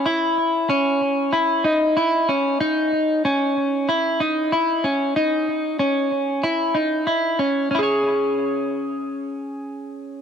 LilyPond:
\new Staff \with { instrumentName = "Clean electric guitar" } { \time 4/4 \key cis \minor \tempo 4 = 94 e'4 cis'4 e'8 dis'8 e'8 cis'8 | dis'4 cis'4 e'8 dis'8 e'8 cis'8 | dis'4 cis'4 e'8 dis'8 e'8 cis'8 | <cis' e' gis' cis''>1 | }